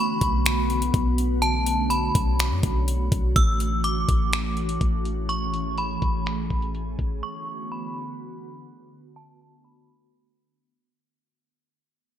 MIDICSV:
0, 0, Header, 1, 5, 480
1, 0, Start_track
1, 0, Tempo, 483871
1, 1412, Time_signature, 4, 2, 24, 8
1, 12083, End_track
2, 0, Start_track
2, 0, Title_t, "Synth bell"
2, 0, Program_c, 0, 98
2, 0, Note_on_c, 0, 83, 89
2, 893, Note_off_c, 0, 83, 0
2, 1408, Note_on_c, 0, 81, 107
2, 1861, Note_off_c, 0, 81, 0
2, 1886, Note_on_c, 0, 83, 81
2, 2809, Note_off_c, 0, 83, 0
2, 3333, Note_on_c, 0, 88, 105
2, 3784, Note_off_c, 0, 88, 0
2, 3810, Note_on_c, 0, 86, 88
2, 4731, Note_off_c, 0, 86, 0
2, 5248, Note_on_c, 0, 85, 99
2, 5701, Note_off_c, 0, 85, 0
2, 5735, Note_on_c, 0, 83, 91
2, 6654, Note_off_c, 0, 83, 0
2, 7172, Note_on_c, 0, 85, 112
2, 7623, Note_off_c, 0, 85, 0
2, 7655, Note_on_c, 0, 83, 82
2, 8574, Note_off_c, 0, 83, 0
2, 9089, Note_on_c, 0, 81, 105
2, 9542, Note_off_c, 0, 81, 0
2, 9568, Note_on_c, 0, 83, 81
2, 10490, Note_off_c, 0, 83, 0
2, 12083, End_track
3, 0, Start_track
3, 0, Title_t, "Ambient pad"
3, 0, Program_c, 1, 92
3, 0, Note_on_c, 1, 50, 86
3, 0, Note_on_c, 1, 57, 81
3, 0, Note_on_c, 1, 59, 82
3, 0, Note_on_c, 1, 66, 96
3, 1392, Note_off_c, 1, 59, 0
3, 1410, Note_on_c, 1, 61, 81
3, 3292, Note_off_c, 1, 57, 0
3, 3293, Note_off_c, 1, 50, 0
3, 3293, Note_off_c, 1, 66, 0
3, 3312, Note_off_c, 1, 61, 0
3, 3331, Note_on_c, 1, 57, 83
3, 3332, Note_on_c, 1, 52, 84
3, 3332, Note_on_c, 1, 61, 79
3, 3333, Note_on_c, 1, 66, 99
3, 5233, Note_off_c, 1, 66, 0
3, 5254, Note_on_c, 1, 68, 96
3, 7133, Note_off_c, 1, 61, 0
3, 7134, Note_off_c, 1, 52, 0
3, 7154, Note_off_c, 1, 68, 0
3, 7172, Note_on_c, 1, 59, 77
3, 7172, Note_on_c, 1, 66, 93
3, 7173, Note_on_c, 1, 50, 85
3, 10972, Note_off_c, 1, 57, 0
3, 10974, Note_off_c, 1, 50, 0
3, 10974, Note_off_c, 1, 59, 0
3, 10974, Note_off_c, 1, 66, 0
3, 12083, End_track
4, 0, Start_track
4, 0, Title_t, "808-style bass"
4, 0, Program_c, 2, 38
4, 213, Note_on_c, 2, 35, 99
4, 904, Note_off_c, 2, 35, 0
4, 932, Note_on_c, 2, 35, 108
4, 2092, Note_off_c, 2, 35, 0
4, 2133, Note_on_c, 2, 35, 101
4, 2490, Note_on_c, 2, 42, 100
4, 2505, Note_off_c, 2, 35, 0
4, 2605, Note_off_c, 2, 42, 0
4, 2613, Note_on_c, 2, 35, 103
4, 3073, Note_off_c, 2, 35, 0
4, 3094, Note_on_c, 2, 35, 102
4, 3323, Note_off_c, 2, 35, 0
4, 3333, Note_on_c, 2, 33, 116
4, 4024, Note_off_c, 2, 33, 0
4, 4053, Note_on_c, 2, 33, 98
4, 4744, Note_off_c, 2, 33, 0
4, 4771, Note_on_c, 2, 33, 109
4, 5932, Note_off_c, 2, 33, 0
4, 5973, Note_on_c, 2, 33, 97
4, 6433, Note_off_c, 2, 33, 0
4, 6451, Note_on_c, 2, 33, 103
4, 6912, Note_off_c, 2, 33, 0
4, 6932, Note_on_c, 2, 33, 97
4, 7163, Note_off_c, 2, 33, 0
4, 12083, End_track
5, 0, Start_track
5, 0, Title_t, "Drums"
5, 212, Note_on_c, 9, 36, 92
5, 212, Note_on_c, 9, 42, 71
5, 311, Note_off_c, 9, 42, 0
5, 312, Note_off_c, 9, 36, 0
5, 453, Note_on_c, 9, 42, 70
5, 460, Note_on_c, 9, 26, 106
5, 552, Note_off_c, 9, 42, 0
5, 559, Note_off_c, 9, 26, 0
5, 693, Note_on_c, 9, 42, 43
5, 793, Note_off_c, 9, 42, 0
5, 813, Note_on_c, 9, 42, 67
5, 912, Note_off_c, 9, 42, 0
5, 932, Note_on_c, 9, 36, 99
5, 933, Note_on_c, 9, 42, 67
5, 1031, Note_off_c, 9, 36, 0
5, 1032, Note_off_c, 9, 42, 0
5, 1173, Note_on_c, 9, 42, 74
5, 1272, Note_off_c, 9, 42, 0
5, 1411, Note_on_c, 9, 42, 67
5, 1510, Note_off_c, 9, 42, 0
5, 1651, Note_on_c, 9, 42, 80
5, 1750, Note_off_c, 9, 42, 0
5, 1890, Note_on_c, 9, 42, 73
5, 1990, Note_off_c, 9, 42, 0
5, 2134, Note_on_c, 9, 36, 95
5, 2134, Note_on_c, 9, 42, 71
5, 2233, Note_off_c, 9, 36, 0
5, 2233, Note_off_c, 9, 42, 0
5, 2375, Note_on_c, 9, 42, 69
5, 2382, Note_on_c, 9, 26, 107
5, 2474, Note_off_c, 9, 42, 0
5, 2481, Note_off_c, 9, 26, 0
5, 2611, Note_on_c, 9, 42, 69
5, 2613, Note_on_c, 9, 36, 91
5, 2711, Note_off_c, 9, 42, 0
5, 2712, Note_off_c, 9, 36, 0
5, 2856, Note_on_c, 9, 42, 70
5, 2955, Note_off_c, 9, 42, 0
5, 3094, Note_on_c, 9, 36, 99
5, 3095, Note_on_c, 9, 42, 71
5, 3193, Note_off_c, 9, 36, 0
5, 3194, Note_off_c, 9, 42, 0
5, 3333, Note_on_c, 9, 36, 120
5, 3334, Note_on_c, 9, 42, 68
5, 3432, Note_off_c, 9, 36, 0
5, 3433, Note_off_c, 9, 42, 0
5, 3573, Note_on_c, 9, 42, 77
5, 3673, Note_off_c, 9, 42, 0
5, 3810, Note_on_c, 9, 42, 73
5, 3910, Note_off_c, 9, 42, 0
5, 4053, Note_on_c, 9, 36, 94
5, 4053, Note_on_c, 9, 42, 67
5, 4152, Note_off_c, 9, 42, 0
5, 4153, Note_off_c, 9, 36, 0
5, 4292, Note_on_c, 9, 42, 68
5, 4299, Note_on_c, 9, 26, 106
5, 4391, Note_off_c, 9, 42, 0
5, 4398, Note_off_c, 9, 26, 0
5, 4532, Note_on_c, 9, 42, 42
5, 4631, Note_off_c, 9, 42, 0
5, 4651, Note_on_c, 9, 42, 69
5, 4750, Note_off_c, 9, 42, 0
5, 4772, Note_on_c, 9, 36, 94
5, 4773, Note_on_c, 9, 42, 69
5, 4871, Note_off_c, 9, 36, 0
5, 4872, Note_off_c, 9, 42, 0
5, 5013, Note_on_c, 9, 42, 68
5, 5112, Note_off_c, 9, 42, 0
5, 5252, Note_on_c, 9, 42, 68
5, 5351, Note_off_c, 9, 42, 0
5, 5492, Note_on_c, 9, 42, 76
5, 5591, Note_off_c, 9, 42, 0
5, 5729, Note_on_c, 9, 42, 74
5, 5829, Note_off_c, 9, 42, 0
5, 5972, Note_on_c, 9, 42, 72
5, 5973, Note_on_c, 9, 36, 93
5, 6071, Note_off_c, 9, 42, 0
5, 6072, Note_off_c, 9, 36, 0
5, 6212, Note_on_c, 9, 42, 65
5, 6219, Note_on_c, 9, 26, 101
5, 6311, Note_off_c, 9, 42, 0
5, 6318, Note_off_c, 9, 26, 0
5, 6452, Note_on_c, 9, 36, 88
5, 6452, Note_on_c, 9, 42, 40
5, 6551, Note_off_c, 9, 36, 0
5, 6551, Note_off_c, 9, 42, 0
5, 6570, Note_on_c, 9, 42, 71
5, 6670, Note_off_c, 9, 42, 0
5, 6692, Note_on_c, 9, 42, 67
5, 6791, Note_off_c, 9, 42, 0
5, 6932, Note_on_c, 9, 36, 96
5, 6932, Note_on_c, 9, 42, 71
5, 7031, Note_off_c, 9, 42, 0
5, 7032, Note_off_c, 9, 36, 0
5, 12083, End_track
0, 0, End_of_file